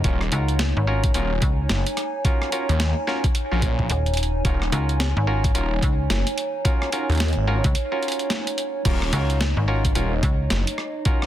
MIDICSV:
0, 0, Header, 1, 6, 480
1, 0, Start_track
1, 0, Key_signature, -6, "minor"
1, 0, Tempo, 550459
1, 39, Time_signature, 4, 2, 24, 8
1, 9820, End_track
2, 0, Start_track
2, 0, Title_t, "Ambient pad"
2, 0, Program_c, 0, 92
2, 0, Note_on_c, 0, 63, 77
2, 0, Note_on_c, 0, 73, 74
2, 37, Note_on_c, 0, 80, 87
2, 7713, Note_off_c, 0, 80, 0
2, 7719, Note_on_c, 0, 75, 85
2, 9820, Note_off_c, 0, 63, 0
2, 9820, Note_off_c, 0, 73, 0
2, 9820, Note_off_c, 0, 75, 0
2, 9820, End_track
3, 0, Start_track
3, 0, Title_t, "Clav"
3, 0, Program_c, 1, 7
3, 39, Note_on_c, 1, 61, 86
3, 40, Note_on_c, 1, 65, 74
3, 40, Note_on_c, 1, 66, 78
3, 40, Note_on_c, 1, 70, 91
3, 203, Note_off_c, 1, 61, 0
3, 204, Note_off_c, 1, 65, 0
3, 204, Note_off_c, 1, 66, 0
3, 204, Note_off_c, 1, 70, 0
3, 282, Note_on_c, 1, 61, 74
3, 282, Note_on_c, 1, 65, 70
3, 282, Note_on_c, 1, 66, 66
3, 282, Note_on_c, 1, 70, 82
3, 511, Note_off_c, 1, 61, 0
3, 511, Note_off_c, 1, 65, 0
3, 511, Note_off_c, 1, 66, 0
3, 511, Note_off_c, 1, 70, 0
3, 761, Note_on_c, 1, 70, 93
3, 762, Note_on_c, 1, 61, 88
3, 762, Note_on_c, 1, 65, 76
3, 762, Note_on_c, 1, 66, 77
3, 973, Note_off_c, 1, 61, 0
3, 973, Note_off_c, 1, 65, 0
3, 973, Note_off_c, 1, 66, 0
3, 973, Note_off_c, 1, 70, 0
3, 1001, Note_on_c, 1, 66, 80
3, 1001, Note_on_c, 1, 70, 100
3, 1002, Note_on_c, 1, 61, 96
3, 1002, Note_on_c, 1, 65, 83
3, 1164, Note_off_c, 1, 70, 0
3, 1165, Note_off_c, 1, 61, 0
3, 1165, Note_off_c, 1, 65, 0
3, 1165, Note_off_c, 1, 66, 0
3, 1961, Note_on_c, 1, 61, 88
3, 1962, Note_on_c, 1, 65, 78
3, 1962, Note_on_c, 1, 66, 77
3, 1962, Note_on_c, 1, 70, 93
3, 2178, Note_off_c, 1, 61, 0
3, 2178, Note_off_c, 1, 65, 0
3, 2178, Note_off_c, 1, 70, 0
3, 2179, Note_off_c, 1, 66, 0
3, 2200, Note_on_c, 1, 61, 79
3, 2200, Note_on_c, 1, 65, 70
3, 2201, Note_on_c, 1, 70, 85
3, 2202, Note_on_c, 1, 66, 69
3, 2430, Note_off_c, 1, 61, 0
3, 2430, Note_off_c, 1, 65, 0
3, 2430, Note_off_c, 1, 70, 0
3, 2431, Note_off_c, 1, 66, 0
3, 2680, Note_on_c, 1, 61, 101
3, 2681, Note_on_c, 1, 65, 90
3, 2681, Note_on_c, 1, 66, 89
3, 2682, Note_on_c, 1, 70, 105
3, 2844, Note_off_c, 1, 61, 0
3, 2844, Note_off_c, 1, 65, 0
3, 2844, Note_off_c, 1, 66, 0
3, 2845, Note_off_c, 1, 70, 0
3, 3065, Note_on_c, 1, 61, 76
3, 3065, Note_on_c, 1, 65, 68
3, 3065, Note_on_c, 1, 66, 69
3, 3066, Note_on_c, 1, 70, 84
3, 3856, Note_off_c, 1, 66, 0
3, 3857, Note_off_c, 1, 61, 0
3, 3857, Note_off_c, 1, 65, 0
3, 3857, Note_off_c, 1, 70, 0
3, 3879, Note_on_c, 1, 61, 84
3, 3879, Note_on_c, 1, 65, 75
3, 3879, Note_on_c, 1, 70, 93
3, 3880, Note_on_c, 1, 66, 78
3, 4043, Note_off_c, 1, 61, 0
3, 4043, Note_off_c, 1, 65, 0
3, 4043, Note_off_c, 1, 70, 0
3, 4044, Note_off_c, 1, 66, 0
3, 4118, Note_on_c, 1, 65, 71
3, 4119, Note_on_c, 1, 61, 73
3, 4119, Note_on_c, 1, 66, 69
3, 4120, Note_on_c, 1, 70, 84
3, 4349, Note_off_c, 1, 65, 0
3, 4350, Note_off_c, 1, 61, 0
3, 4350, Note_off_c, 1, 66, 0
3, 4350, Note_off_c, 1, 70, 0
3, 4598, Note_on_c, 1, 61, 83
3, 4598, Note_on_c, 1, 65, 79
3, 4598, Note_on_c, 1, 66, 79
3, 4598, Note_on_c, 1, 70, 93
3, 4811, Note_off_c, 1, 61, 0
3, 4811, Note_off_c, 1, 65, 0
3, 4811, Note_off_c, 1, 66, 0
3, 4811, Note_off_c, 1, 70, 0
3, 4837, Note_on_c, 1, 61, 88
3, 4838, Note_on_c, 1, 65, 87
3, 4838, Note_on_c, 1, 66, 85
3, 4839, Note_on_c, 1, 70, 106
3, 5002, Note_off_c, 1, 61, 0
3, 5003, Note_off_c, 1, 65, 0
3, 5003, Note_off_c, 1, 66, 0
3, 5003, Note_off_c, 1, 70, 0
3, 5796, Note_on_c, 1, 61, 89
3, 5796, Note_on_c, 1, 65, 82
3, 5796, Note_on_c, 1, 66, 77
3, 5797, Note_on_c, 1, 70, 97
3, 6015, Note_off_c, 1, 65, 0
3, 6015, Note_off_c, 1, 66, 0
3, 6016, Note_off_c, 1, 61, 0
3, 6016, Note_off_c, 1, 70, 0
3, 6040, Note_on_c, 1, 61, 76
3, 6041, Note_on_c, 1, 65, 71
3, 6041, Note_on_c, 1, 66, 68
3, 6041, Note_on_c, 1, 70, 85
3, 6270, Note_off_c, 1, 61, 0
3, 6270, Note_off_c, 1, 65, 0
3, 6271, Note_off_c, 1, 66, 0
3, 6271, Note_off_c, 1, 70, 0
3, 6518, Note_on_c, 1, 65, 84
3, 6518, Note_on_c, 1, 66, 88
3, 6518, Note_on_c, 1, 70, 106
3, 6519, Note_on_c, 1, 61, 97
3, 6683, Note_off_c, 1, 61, 0
3, 6683, Note_off_c, 1, 65, 0
3, 6683, Note_off_c, 1, 66, 0
3, 6683, Note_off_c, 1, 70, 0
3, 6905, Note_on_c, 1, 61, 74
3, 6905, Note_on_c, 1, 65, 72
3, 6906, Note_on_c, 1, 66, 68
3, 6906, Note_on_c, 1, 70, 84
3, 7696, Note_off_c, 1, 65, 0
3, 7697, Note_off_c, 1, 61, 0
3, 7697, Note_off_c, 1, 66, 0
3, 7697, Note_off_c, 1, 70, 0
3, 7720, Note_on_c, 1, 65, 75
3, 7721, Note_on_c, 1, 61, 81
3, 7721, Note_on_c, 1, 66, 73
3, 7721, Note_on_c, 1, 70, 92
3, 7884, Note_off_c, 1, 61, 0
3, 7884, Note_off_c, 1, 65, 0
3, 7884, Note_off_c, 1, 66, 0
3, 7884, Note_off_c, 1, 70, 0
3, 7960, Note_on_c, 1, 65, 67
3, 7960, Note_on_c, 1, 70, 81
3, 7961, Note_on_c, 1, 61, 75
3, 7961, Note_on_c, 1, 66, 67
3, 8190, Note_off_c, 1, 61, 0
3, 8190, Note_off_c, 1, 65, 0
3, 8190, Note_off_c, 1, 66, 0
3, 8190, Note_off_c, 1, 70, 0
3, 8439, Note_on_c, 1, 61, 85
3, 8440, Note_on_c, 1, 70, 95
3, 8441, Note_on_c, 1, 65, 77
3, 8441, Note_on_c, 1, 66, 77
3, 8651, Note_off_c, 1, 61, 0
3, 8652, Note_off_c, 1, 65, 0
3, 8652, Note_off_c, 1, 66, 0
3, 8652, Note_off_c, 1, 70, 0
3, 8678, Note_on_c, 1, 65, 84
3, 8679, Note_on_c, 1, 61, 97
3, 8679, Note_on_c, 1, 66, 88
3, 8679, Note_on_c, 1, 70, 103
3, 8843, Note_off_c, 1, 61, 0
3, 8843, Note_off_c, 1, 65, 0
3, 8843, Note_off_c, 1, 66, 0
3, 8843, Note_off_c, 1, 70, 0
3, 9640, Note_on_c, 1, 61, 89
3, 9640, Note_on_c, 1, 65, 82
3, 9640, Note_on_c, 1, 66, 80
3, 9641, Note_on_c, 1, 70, 98
3, 9820, Note_off_c, 1, 61, 0
3, 9820, Note_off_c, 1, 65, 0
3, 9820, Note_off_c, 1, 66, 0
3, 9820, Note_off_c, 1, 70, 0
3, 9820, End_track
4, 0, Start_track
4, 0, Title_t, "FM bass"
4, 0, Program_c, 2, 39
4, 282, Note_on_c, 2, 37, 95
4, 644, Note_off_c, 2, 37, 0
4, 668, Note_on_c, 2, 32, 96
4, 985, Note_off_c, 2, 32, 0
4, 1240, Note_on_c, 2, 37, 97
4, 1465, Note_off_c, 2, 37, 0
4, 3402, Note_on_c, 2, 27, 100
4, 3866, Note_off_c, 2, 27, 0
4, 4118, Note_on_c, 2, 37, 94
4, 4482, Note_off_c, 2, 37, 0
4, 4505, Note_on_c, 2, 32, 101
4, 4824, Note_off_c, 2, 32, 0
4, 5081, Note_on_c, 2, 37, 100
4, 5305, Note_off_c, 2, 37, 0
4, 6666, Note_on_c, 2, 37, 94
4, 6759, Note_off_c, 2, 37, 0
4, 7958, Note_on_c, 2, 37, 91
4, 8322, Note_off_c, 2, 37, 0
4, 8343, Note_on_c, 2, 32, 94
4, 8663, Note_off_c, 2, 32, 0
4, 8920, Note_on_c, 2, 37, 102
4, 9145, Note_off_c, 2, 37, 0
4, 9820, End_track
5, 0, Start_track
5, 0, Title_t, "Detuned saw bass"
5, 0, Program_c, 3, 39
5, 39, Note_on_c, 3, 27, 95
5, 264, Note_off_c, 3, 27, 0
5, 998, Note_on_c, 3, 27, 96
5, 1224, Note_off_c, 3, 27, 0
5, 1480, Note_on_c, 3, 30, 94
5, 1603, Note_off_c, 3, 30, 0
5, 2346, Note_on_c, 3, 39, 99
5, 2562, Note_off_c, 3, 39, 0
5, 3068, Note_on_c, 3, 34, 92
5, 3385, Note_off_c, 3, 34, 0
5, 3879, Note_on_c, 3, 27, 95
5, 4105, Note_off_c, 3, 27, 0
5, 4840, Note_on_c, 3, 27, 100
5, 5065, Note_off_c, 3, 27, 0
5, 5319, Note_on_c, 3, 30, 99
5, 5443, Note_off_c, 3, 30, 0
5, 6185, Note_on_c, 3, 39, 98
5, 6402, Note_off_c, 3, 39, 0
5, 6426, Note_on_c, 3, 32, 98
5, 6643, Note_off_c, 3, 32, 0
5, 7720, Note_on_c, 3, 27, 96
5, 7945, Note_off_c, 3, 27, 0
5, 8680, Note_on_c, 3, 27, 96
5, 8905, Note_off_c, 3, 27, 0
5, 9163, Note_on_c, 3, 30, 95
5, 9285, Note_off_c, 3, 30, 0
5, 9820, End_track
6, 0, Start_track
6, 0, Title_t, "Drums"
6, 37, Note_on_c, 9, 36, 122
6, 37, Note_on_c, 9, 42, 75
6, 124, Note_off_c, 9, 36, 0
6, 124, Note_off_c, 9, 42, 0
6, 183, Note_on_c, 9, 37, 53
6, 271, Note_off_c, 9, 37, 0
6, 277, Note_on_c, 9, 42, 64
6, 364, Note_off_c, 9, 42, 0
6, 423, Note_on_c, 9, 42, 35
6, 510, Note_off_c, 9, 42, 0
6, 516, Note_on_c, 9, 38, 121
6, 516, Note_on_c, 9, 42, 79
6, 603, Note_off_c, 9, 38, 0
6, 603, Note_off_c, 9, 42, 0
6, 903, Note_on_c, 9, 42, 65
6, 904, Note_on_c, 9, 36, 105
6, 991, Note_off_c, 9, 42, 0
6, 992, Note_off_c, 9, 36, 0
6, 997, Note_on_c, 9, 42, 77
6, 1085, Note_off_c, 9, 42, 0
6, 1237, Note_on_c, 9, 42, 66
6, 1239, Note_on_c, 9, 36, 105
6, 1324, Note_off_c, 9, 42, 0
6, 1326, Note_off_c, 9, 36, 0
6, 1478, Note_on_c, 9, 38, 121
6, 1478, Note_on_c, 9, 42, 76
6, 1565, Note_off_c, 9, 38, 0
6, 1565, Note_off_c, 9, 42, 0
6, 1626, Note_on_c, 9, 42, 61
6, 1713, Note_off_c, 9, 42, 0
6, 1718, Note_on_c, 9, 37, 49
6, 1718, Note_on_c, 9, 42, 62
6, 1805, Note_off_c, 9, 37, 0
6, 1805, Note_off_c, 9, 42, 0
6, 1959, Note_on_c, 9, 36, 118
6, 1960, Note_on_c, 9, 42, 76
6, 2046, Note_off_c, 9, 36, 0
6, 2047, Note_off_c, 9, 42, 0
6, 2107, Note_on_c, 9, 37, 55
6, 2194, Note_off_c, 9, 37, 0
6, 2200, Note_on_c, 9, 42, 64
6, 2287, Note_off_c, 9, 42, 0
6, 2348, Note_on_c, 9, 42, 35
6, 2436, Note_off_c, 9, 42, 0
6, 2440, Note_on_c, 9, 38, 119
6, 2440, Note_on_c, 9, 42, 80
6, 2527, Note_off_c, 9, 38, 0
6, 2527, Note_off_c, 9, 42, 0
6, 2680, Note_on_c, 9, 38, 35
6, 2767, Note_off_c, 9, 38, 0
6, 2825, Note_on_c, 9, 36, 101
6, 2826, Note_on_c, 9, 42, 63
6, 2913, Note_off_c, 9, 36, 0
6, 2914, Note_off_c, 9, 42, 0
6, 2919, Note_on_c, 9, 42, 77
6, 3007, Note_off_c, 9, 42, 0
6, 3158, Note_on_c, 9, 42, 65
6, 3159, Note_on_c, 9, 36, 97
6, 3245, Note_off_c, 9, 42, 0
6, 3246, Note_off_c, 9, 36, 0
6, 3305, Note_on_c, 9, 36, 59
6, 3393, Note_off_c, 9, 36, 0
6, 3397, Note_on_c, 9, 42, 73
6, 3484, Note_off_c, 9, 42, 0
6, 3543, Note_on_c, 9, 42, 27
6, 3607, Note_off_c, 9, 42, 0
6, 3607, Note_on_c, 9, 42, 37
6, 3637, Note_off_c, 9, 42, 0
6, 3637, Note_on_c, 9, 42, 62
6, 3687, Note_off_c, 9, 42, 0
6, 3687, Note_on_c, 9, 42, 46
6, 3775, Note_off_c, 9, 42, 0
6, 3879, Note_on_c, 9, 36, 118
6, 3879, Note_on_c, 9, 42, 81
6, 3966, Note_off_c, 9, 36, 0
6, 3966, Note_off_c, 9, 42, 0
6, 4027, Note_on_c, 9, 37, 54
6, 4114, Note_off_c, 9, 37, 0
6, 4120, Note_on_c, 9, 42, 65
6, 4207, Note_off_c, 9, 42, 0
6, 4266, Note_on_c, 9, 42, 36
6, 4353, Note_off_c, 9, 42, 0
6, 4360, Note_on_c, 9, 38, 114
6, 4360, Note_on_c, 9, 42, 80
6, 4447, Note_off_c, 9, 38, 0
6, 4447, Note_off_c, 9, 42, 0
6, 4746, Note_on_c, 9, 36, 102
6, 4748, Note_on_c, 9, 42, 65
6, 4833, Note_off_c, 9, 36, 0
6, 4835, Note_off_c, 9, 42, 0
6, 4840, Note_on_c, 9, 42, 77
6, 4927, Note_off_c, 9, 42, 0
6, 5079, Note_on_c, 9, 36, 102
6, 5081, Note_on_c, 9, 42, 64
6, 5166, Note_off_c, 9, 36, 0
6, 5168, Note_off_c, 9, 42, 0
6, 5320, Note_on_c, 9, 38, 121
6, 5320, Note_on_c, 9, 42, 79
6, 5407, Note_off_c, 9, 38, 0
6, 5407, Note_off_c, 9, 42, 0
6, 5466, Note_on_c, 9, 42, 60
6, 5553, Note_off_c, 9, 42, 0
6, 5560, Note_on_c, 9, 42, 62
6, 5647, Note_off_c, 9, 42, 0
6, 5799, Note_on_c, 9, 36, 120
6, 5800, Note_on_c, 9, 42, 82
6, 5886, Note_off_c, 9, 36, 0
6, 5887, Note_off_c, 9, 42, 0
6, 5945, Note_on_c, 9, 37, 57
6, 6033, Note_off_c, 9, 37, 0
6, 6038, Note_on_c, 9, 42, 70
6, 6125, Note_off_c, 9, 42, 0
6, 6188, Note_on_c, 9, 42, 17
6, 6210, Note_off_c, 9, 42, 0
6, 6210, Note_on_c, 9, 42, 20
6, 6234, Note_off_c, 9, 42, 0
6, 6234, Note_on_c, 9, 42, 22
6, 6257, Note_off_c, 9, 42, 0
6, 6257, Note_on_c, 9, 42, 23
6, 6280, Note_off_c, 9, 42, 0
6, 6280, Note_on_c, 9, 38, 116
6, 6280, Note_on_c, 9, 42, 83
6, 6317, Note_off_c, 9, 42, 0
6, 6317, Note_on_c, 9, 42, 30
6, 6351, Note_off_c, 9, 42, 0
6, 6351, Note_on_c, 9, 42, 31
6, 6367, Note_off_c, 9, 38, 0
6, 6389, Note_off_c, 9, 42, 0
6, 6389, Note_on_c, 9, 42, 34
6, 6477, Note_off_c, 9, 42, 0
6, 6665, Note_on_c, 9, 42, 69
6, 6666, Note_on_c, 9, 36, 103
6, 6752, Note_off_c, 9, 42, 0
6, 6753, Note_off_c, 9, 36, 0
6, 6758, Note_on_c, 9, 42, 82
6, 6845, Note_off_c, 9, 42, 0
6, 6998, Note_on_c, 9, 42, 31
6, 7048, Note_off_c, 9, 42, 0
6, 7048, Note_on_c, 9, 42, 42
6, 7079, Note_off_c, 9, 42, 0
6, 7079, Note_on_c, 9, 42, 53
6, 7145, Note_off_c, 9, 42, 0
6, 7145, Note_on_c, 9, 42, 37
6, 7232, Note_off_c, 9, 42, 0
6, 7238, Note_on_c, 9, 38, 114
6, 7238, Note_on_c, 9, 42, 81
6, 7325, Note_off_c, 9, 38, 0
6, 7325, Note_off_c, 9, 42, 0
6, 7387, Note_on_c, 9, 42, 62
6, 7474, Note_off_c, 9, 42, 0
6, 7480, Note_on_c, 9, 42, 64
6, 7568, Note_off_c, 9, 42, 0
6, 7718, Note_on_c, 9, 42, 87
6, 7718, Note_on_c, 9, 49, 79
6, 7719, Note_on_c, 9, 36, 123
6, 7806, Note_off_c, 9, 36, 0
6, 7806, Note_off_c, 9, 42, 0
6, 7806, Note_off_c, 9, 49, 0
6, 7867, Note_on_c, 9, 37, 57
6, 7954, Note_off_c, 9, 37, 0
6, 7959, Note_on_c, 9, 42, 71
6, 8046, Note_off_c, 9, 42, 0
6, 8108, Note_on_c, 9, 42, 39
6, 8195, Note_off_c, 9, 42, 0
6, 8202, Note_on_c, 9, 38, 126
6, 8202, Note_on_c, 9, 42, 85
6, 8290, Note_off_c, 9, 38, 0
6, 8290, Note_off_c, 9, 42, 0
6, 8586, Note_on_c, 9, 36, 103
6, 8587, Note_on_c, 9, 42, 70
6, 8673, Note_off_c, 9, 36, 0
6, 8674, Note_off_c, 9, 42, 0
6, 8680, Note_on_c, 9, 42, 84
6, 8767, Note_off_c, 9, 42, 0
6, 8919, Note_on_c, 9, 36, 112
6, 8921, Note_on_c, 9, 42, 68
6, 9006, Note_off_c, 9, 36, 0
6, 9008, Note_off_c, 9, 42, 0
6, 9159, Note_on_c, 9, 38, 120
6, 9159, Note_on_c, 9, 42, 84
6, 9246, Note_off_c, 9, 38, 0
6, 9246, Note_off_c, 9, 42, 0
6, 9307, Note_on_c, 9, 42, 65
6, 9394, Note_off_c, 9, 42, 0
6, 9400, Note_on_c, 9, 37, 53
6, 9487, Note_off_c, 9, 37, 0
6, 9638, Note_on_c, 9, 42, 85
6, 9640, Note_on_c, 9, 36, 126
6, 9725, Note_off_c, 9, 42, 0
6, 9727, Note_off_c, 9, 36, 0
6, 9786, Note_on_c, 9, 37, 54
6, 9820, Note_off_c, 9, 37, 0
6, 9820, End_track
0, 0, End_of_file